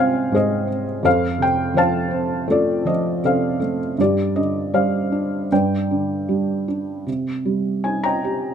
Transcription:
Already playing: C2 G#2 C3 C4 D#4 G#4 C5 D#5 G5 G#5
0.00 F5
0.32 G#2 G#4 C5 D#5
0.68 C4
1.03 F2 A4 C5 F5
1.38 C3 G5
1.74 F3 C5 F5 A5
2.11 C4
2.48 A3 F4 A4 D5
2.85 F3 D#5
3.23 C3 A4 C5 F5
3.60 A3
3.98 G2 G4 D5
4.36 D3 D#5
4.74 G3 C5 D5 F5
5.12 D4
5.52 G2 B4 D5 G5
5.91 D3
6.29 G3
6.68 D4
7.07 C3
7.45 G3
7.84 D#4 G#5
8.04 D#5 G5 A#5
8.24 G4

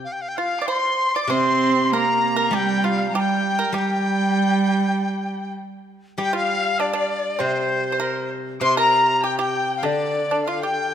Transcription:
0.05 F5
0.12 G5
0.22 F5
0.29 G5
0.36 F4 F5
0.59 D5 D6
0.66 C5 C6
1.15 D5 D6
1.23 D6
1.28 C3 C4 C5 C6
1.92 A#3 A#4 A#5 C6
1.98 A#5
2.36 A#4
2.51 G3 G4 G5
2.84 F4 F5
3.08 A#5
3.14 G3 G4 G5 A#5
3.20 G5
3.59 A#4
3.72 G3 G4 G5
6.18 G3 G4 G5
6.22 G5
6.33 F4 F5
6.80 D4 D5
6.93 D4 D5
7.39 C3 C4 C5
7.92 C5
8.00 A#4
8.60 C3 C5 C6 D6
8.64 C6
8.76 A#4 A#5
9.23 G4 G5
9.39 G4 G5
9.77 F5
9.83 D3 D4 D5
10.31 D4 D5
10.45 F4 F5
10.62 G4 G5

